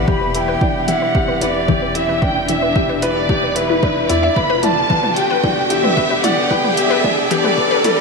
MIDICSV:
0, 0, Header, 1, 8, 480
1, 0, Start_track
1, 0, Key_signature, 1, "minor"
1, 0, Tempo, 535714
1, 70, Time_signature, 4, 2, 24, 8
1, 7174, End_track
2, 0, Start_track
2, 0, Title_t, "Violin section"
2, 0, Program_c, 0, 48
2, 73, Note_on_c, 0, 83, 101
2, 295, Note_off_c, 0, 83, 0
2, 325, Note_on_c, 0, 79, 105
2, 797, Note_on_c, 0, 78, 93
2, 798, Note_off_c, 0, 79, 0
2, 1272, Note_on_c, 0, 74, 91
2, 1274, Note_off_c, 0, 78, 0
2, 1751, Note_off_c, 0, 74, 0
2, 1755, Note_on_c, 0, 76, 90
2, 1992, Note_off_c, 0, 76, 0
2, 1998, Note_on_c, 0, 79, 105
2, 2218, Note_off_c, 0, 79, 0
2, 2245, Note_on_c, 0, 76, 97
2, 2641, Note_off_c, 0, 76, 0
2, 2651, Note_on_c, 0, 76, 62
2, 2712, Note_off_c, 0, 76, 0
2, 2724, Note_on_c, 0, 74, 95
2, 3197, Note_off_c, 0, 74, 0
2, 3204, Note_on_c, 0, 71, 99
2, 3677, Note_off_c, 0, 71, 0
2, 3680, Note_on_c, 0, 74, 88
2, 3912, Note_on_c, 0, 83, 100
2, 3915, Note_off_c, 0, 74, 0
2, 4151, Note_off_c, 0, 83, 0
2, 4153, Note_on_c, 0, 81, 109
2, 4631, Note_off_c, 0, 81, 0
2, 4641, Note_on_c, 0, 79, 90
2, 5116, Note_off_c, 0, 79, 0
2, 5124, Note_on_c, 0, 76, 103
2, 5592, Note_on_c, 0, 78, 87
2, 5597, Note_off_c, 0, 76, 0
2, 5831, Note_off_c, 0, 78, 0
2, 5832, Note_on_c, 0, 79, 97
2, 6071, Note_off_c, 0, 79, 0
2, 6076, Note_on_c, 0, 76, 96
2, 6481, Note_off_c, 0, 76, 0
2, 6491, Note_on_c, 0, 76, 70
2, 6552, Note_off_c, 0, 76, 0
2, 6557, Note_on_c, 0, 74, 94
2, 7034, Note_off_c, 0, 74, 0
2, 7039, Note_on_c, 0, 71, 96
2, 7174, Note_off_c, 0, 71, 0
2, 7174, End_track
3, 0, Start_track
3, 0, Title_t, "Synth arpeggio sound"
3, 0, Program_c, 1, 84
3, 73, Note_on_c, 1, 52, 83
3, 99, Note_off_c, 1, 52, 0
3, 192, Note_on_c, 1, 71, 69
3, 219, Note_off_c, 1, 71, 0
3, 431, Note_on_c, 1, 71, 100
3, 499, Note_off_c, 1, 71, 0
3, 551, Note_on_c, 1, 64, 81
3, 578, Note_off_c, 1, 64, 0
3, 791, Note_on_c, 1, 52, 80
3, 818, Note_off_c, 1, 52, 0
3, 912, Note_on_c, 1, 71, 75
3, 939, Note_off_c, 1, 71, 0
3, 1149, Note_on_c, 1, 71, 108
3, 1218, Note_off_c, 1, 71, 0
3, 1270, Note_on_c, 1, 64, 66
3, 1297, Note_off_c, 1, 64, 0
3, 1509, Note_on_c, 1, 52, 82
3, 1537, Note_off_c, 1, 52, 0
3, 1631, Note_on_c, 1, 71, 70
3, 1658, Note_off_c, 1, 71, 0
3, 1870, Note_on_c, 1, 71, 92
3, 1939, Note_off_c, 1, 71, 0
3, 1991, Note_on_c, 1, 64, 88
3, 2018, Note_off_c, 1, 64, 0
3, 2233, Note_on_c, 1, 52, 74
3, 2259, Note_off_c, 1, 52, 0
3, 2351, Note_on_c, 1, 71, 77
3, 2378, Note_off_c, 1, 71, 0
3, 2592, Note_on_c, 1, 71, 95
3, 2660, Note_off_c, 1, 71, 0
3, 2714, Note_on_c, 1, 64, 75
3, 2740, Note_off_c, 1, 64, 0
3, 2952, Note_on_c, 1, 52, 79
3, 2979, Note_off_c, 1, 52, 0
3, 3074, Note_on_c, 1, 71, 74
3, 3100, Note_off_c, 1, 71, 0
3, 3315, Note_on_c, 1, 64, 65
3, 3359, Note_off_c, 1, 64, 0
3, 3433, Note_on_c, 1, 71, 81
3, 3501, Note_off_c, 1, 71, 0
3, 3672, Note_on_c, 1, 64, 76
3, 3717, Note_off_c, 1, 64, 0
3, 3791, Note_on_c, 1, 76, 101
3, 3818, Note_off_c, 1, 76, 0
3, 4029, Note_on_c, 1, 71, 101
3, 4098, Note_off_c, 1, 71, 0
3, 4151, Note_on_c, 1, 64, 70
3, 4178, Note_off_c, 1, 64, 0
3, 4393, Note_on_c, 1, 52, 81
3, 4419, Note_off_c, 1, 52, 0
3, 4511, Note_on_c, 1, 71, 72
3, 4538, Note_off_c, 1, 71, 0
3, 4753, Note_on_c, 1, 71, 103
3, 4820, Note_off_c, 1, 71, 0
3, 4872, Note_on_c, 1, 64, 79
3, 4899, Note_off_c, 1, 64, 0
3, 5111, Note_on_c, 1, 52, 73
3, 5138, Note_off_c, 1, 52, 0
3, 5232, Note_on_c, 1, 71, 70
3, 5258, Note_off_c, 1, 71, 0
3, 5469, Note_on_c, 1, 71, 94
3, 5538, Note_off_c, 1, 71, 0
3, 5591, Note_on_c, 1, 64, 79
3, 5618, Note_off_c, 1, 64, 0
3, 5829, Note_on_c, 1, 52, 87
3, 5857, Note_off_c, 1, 52, 0
3, 5947, Note_on_c, 1, 71, 76
3, 5976, Note_off_c, 1, 71, 0
3, 6185, Note_on_c, 1, 71, 99
3, 6257, Note_off_c, 1, 71, 0
3, 6304, Note_on_c, 1, 64, 83
3, 6335, Note_off_c, 1, 64, 0
3, 6547, Note_on_c, 1, 52, 81
3, 6576, Note_off_c, 1, 52, 0
3, 6665, Note_on_c, 1, 71, 74
3, 6695, Note_off_c, 1, 71, 0
3, 6907, Note_on_c, 1, 71, 108
3, 6977, Note_off_c, 1, 71, 0
3, 7030, Note_on_c, 1, 64, 76
3, 7057, Note_off_c, 1, 64, 0
3, 7174, End_track
4, 0, Start_track
4, 0, Title_t, "Upright piano"
4, 0, Program_c, 2, 0
4, 0, Control_c, 2, 64, 127
4, 0, Note_on_c, 2, 62, 71
4, 0, Note_on_c, 2, 64, 67
4, 0, Note_on_c, 2, 67, 72
4, 0, Note_on_c, 2, 71, 88
4, 69, Note_off_c, 2, 67, 0
4, 69, Note_on_c, 2, 67, 78
4, 298, Note_off_c, 2, 67, 0
4, 315, Note_off_c, 2, 64, 0
4, 315, Note_on_c, 2, 64, 65
4, 541, Note_off_c, 2, 64, 0
4, 554, Note_off_c, 2, 62, 0
4, 554, Note_on_c, 2, 62, 65
4, 689, Note_off_c, 2, 62, 0
4, 791, Note_on_c, 2, 64, 95
4, 1018, Note_off_c, 2, 64, 0
4, 1033, Note_on_c, 2, 67, 73
4, 1259, Note_off_c, 2, 67, 0
4, 1273, Note_off_c, 2, 71, 0
4, 1273, Note_on_c, 2, 71, 67
4, 1499, Note_off_c, 2, 71, 0
4, 1515, Note_on_c, 2, 67, 70
4, 1741, Note_off_c, 2, 67, 0
4, 1754, Note_on_c, 2, 64, 68
4, 1980, Note_off_c, 2, 64, 0
4, 1991, Note_on_c, 2, 62, 68
4, 2127, Note_off_c, 2, 62, 0
4, 2232, Note_on_c, 2, 64, 68
4, 2459, Note_off_c, 2, 64, 0
4, 2469, Note_on_c, 2, 67, 66
4, 2698, Note_off_c, 2, 67, 0
4, 2709, Note_on_c, 2, 71, 97
4, 2938, Note_off_c, 2, 71, 0
4, 2948, Note_on_c, 2, 67, 68
4, 3177, Note_off_c, 2, 67, 0
4, 3189, Note_on_c, 2, 64, 69
4, 3417, Note_off_c, 2, 64, 0
4, 3429, Note_on_c, 2, 62, 76
4, 3567, Note_off_c, 2, 62, 0
4, 3670, Note_on_c, 2, 64, 94
4, 3898, Note_off_c, 2, 64, 0
4, 3912, Note_on_c, 2, 71, 76
4, 3922, Control_c, 2, 64, 0
4, 4098, Control_c, 2, 64, 127
4, 4139, Note_off_c, 2, 71, 0
4, 4151, Note_on_c, 2, 74, 69
4, 4378, Note_off_c, 2, 74, 0
4, 4393, Note_on_c, 2, 71, 68
4, 4619, Note_off_c, 2, 71, 0
4, 4630, Note_on_c, 2, 67, 69
4, 4858, Note_off_c, 2, 67, 0
4, 4871, Note_on_c, 2, 62, 71
4, 5007, Note_off_c, 2, 62, 0
4, 5108, Note_on_c, 2, 67, 74
4, 5337, Note_off_c, 2, 67, 0
4, 5350, Note_on_c, 2, 71, 75
4, 5578, Note_off_c, 2, 71, 0
4, 5586, Note_on_c, 2, 74, 94
4, 5816, Note_off_c, 2, 74, 0
4, 5829, Note_on_c, 2, 71, 78
4, 6058, Note_off_c, 2, 71, 0
4, 6070, Note_on_c, 2, 67, 73
4, 6298, Note_off_c, 2, 67, 0
4, 6311, Note_on_c, 2, 62, 70
4, 6447, Note_off_c, 2, 62, 0
4, 6549, Note_on_c, 2, 67, 98
4, 6778, Note_off_c, 2, 67, 0
4, 6785, Note_on_c, 2, 71, 74
4, 7016, Note_off_c, 2, 71, 0
4, 7030, Note_on_c, 2, 74, 77
4, 7174, Note_off_c, 2, 74, 0
4, 7174, End_track
5, 0, Start_track
5, 0, Title_t, "String quartet"
5, 0, Program_c, 3, 48
5, 0, Note_on_c, 3, 47, 66
5, 0, Note_on_c, 3, 52, 67
5, 0, Note_on_c, 3, 67, 60
5, 0, Note_on_c, 3, 74, 67
5, 3906, Note_off_c, 3, 47, 0
5, 3906, Note_off_c, 3, 52, 0
5, 3908, Note_off_c, 3, 67, 0
5, 3910, Note_on_c, 3, 50, 63
5, 3911, Note_off_c, 3, 74, 0
5, 3973, Note_on_c, 3, 59, 75
5, 4243, Note_on_c, 3, 67, 82
5, 4807, Note_on_c, 3, 74, 65
5, 7174, Note_off_c, 3, 50, 0
5, 7174, Note_off_c, 3, 59, 0
5, 7174, Note_off_c, 3, 67, 0
5, 7174, Note_off_c, 3, 74, 0
5, 7174, End_track
6, 0, Start_track
6, 0, Title_t, "Sub bass"
6, 0, Program_c, 4, 38
6, 68, Note_on_c, 4, 28, 98
6, 494, Note_off_c, 4, 28, 0
6, 1028, Note_on_c, 4, 26, 89
6, 1200, Note_off_c, 4, 26, 0
6, 1269, Note_on_c, 4, 28, 83
6, 3662, Note_off_c, 4, 28, 0
6, 3667, Note_on_c, 4, 40, 81
6, 3839, Note_off_c, 4, 40, 0
6, 3909, Note_on_c, 4, 28, 98
6, 4334, Note_off_c, 4, 28, 0
6, 4871, Note_on_c, 4, 26, 88
6, 5041, Note_off_c, 4, 26, 0
6, 5111, Note_on_c, 4, 28, 82
6, 7174, Note_off_c, 4, 28, 0
6, 7174, End_track
7, 0, Start_track
7, 0, Title_t, "Riser"
7, 0, Program_c, 5, 103
7, 0, Note_on_c, 5, 60, 67
7, 7174, Note_off_c, 5, 60, 0
7, 7174, End_track
8, 0, Start_track
8, 0, Title_t, "Drums"
8, 70, Note_on_c, 9, 36, 98
8, 159, Note_off_c, 9, 36, 0
8, 310, Note_on_c, 9, 42, 61
8, 399, Note_off_c, 9, 42, 0
8, 549, Note_on_c, 9, 36, 100
8, 639, Note_off_c, 9, 36, 0
8, 788, Note_on_c, 9, 42, 58
8, 878, Note_off_c, 9, 42, 0
8, 1029, Note_on_c, 9, 36, 100
8, 1119, Note_off_c, 9, 36, 0
8, 1268, Note_on_c, 9, 42, 62
8, 1357, Note_off_c, 9, 42, 0
8, 1509, Note_on_c, 9, 36, 105
8, 1599, Note_off_c, 9, 36, 0
8, 1748, Note_on_c, 9, 42, 62
8, 1838, Note_off_c, 9, 42, 0
8, 1990, Note_on_c, 9, 36, 93
8, 2080, Note_off_c, 9, 36, 0
8, 2227, Note_on_c, 9, 42, 62
8, 2316, Note_off_c, 9, 42, 0
8, 2470, Note_on_c, 9, 36, 99
8, 2559, Note_off_c, 9, 36, 0
8, 2709, Note_on_c, 9, 42, 57
8, 2799, Note_off_c, 9, 42, 0
8, 2950, Note_on_c, 9, 36, 101
8, 3039, Note_off_c, 9, 36, 0
8, 3188, Note_on_c, 9, 42, 63
8, 3278, Note_off_c, 9, 42, 0
8, 3430, Note_on_c, 9, 36, 107
8, 3519, Note_off_c, 9, 36, 0
8, 3669, Note_on_c, 9, 42, 65
8, 3758, Note_off_c, 9, 42, 0
8, 3910, Note_on_c, 9, 36, 96
8, 3999, Note_off_c, 9, 36, 0
8, 4148, Note_on_c, 9, 42, 59
8, 4148, Note_on_c, 9, 45, 62
8, 4238, Note_off_c, 9, 42, 0
8, 4238, Note_off_c, 9, 45, 0
8, 4390, Note_on_c, 9, 36, 99
8, 4480, Note_off_c, 9, 36, 0
8, 4508, Note_on_c, 9, 45, 59
8, 4598, Note_off_c, 9, 45, 0
8, 4627, Note_on_c, 9, 42, 56
8, 4717, Note_off_c, 9, 42, 0
8, 4870, Note_on_c, 9, 36, 106
8, 4870, Note_on_c, 9, 45, 61
8, 4960, Note_off_c, 9, 36, 0
8, 4960, Note_off_c, 9, 45, 0
8, 5109, Note_on_c, 9, 42, 64
8, 5199, Note_off_c, 9, 42, 0
8, 5227, Note_on_c, 9, 45, 64
8, 5317, Note_off_c, 9, 45, 0
8, 5350, Note_on_c, 9, 36, 104
8, 5440, Note_off_c, 9, 36, 0
8, 5591, Note_on_c, 9, 42, 63
8, 5591, Note_on_c, 9, 45, 63
8, 5680, Note_off_c, 9, 42, 0
8, 5680, Note_off_c, 9, 45, 0
8, 5829, Note_on_c, 9, 36, 90
8, 5919, Note_off_c, 9, 36, 0
8, 5950, Note_on_c, 9, 45, 61
8, 6040, Note_off_c, 9, 45, 0
8, 6069, Note_on_c, 9, 42, 63
8, 6159, Note_off_c, 9, 42, 0
8, 6309, Note_on_c, 9, 36, 95
8, 6310, Note_on_c, 9, 45, 62
8, 6399, Note_off_c, 9, 36, 0
8, 6400, Note_off_c, 9, 45, 0
8, 6549, Note_on_c, 9, 42, 56
8, 6638, Note_off_c, 9, 42, 0
8, 6667, Note_on_c, 9, 45, 63
8, 6756, Note_off_c, 9, 45, 0
8, 6788, Note_on_c, 9, 36, 102
8, 6878, Note_off_c, 9, 36, 0
8, 7028, Note_on_c, 9, 42, 61
8, 7028, Note_on_c, 9, 45, 66
8, 7117, Note_off_c, 9, 42, 0
8, 7117, Note_off_c, 9, 45, 0
8, 7174, End_track
0, 0, End_of_file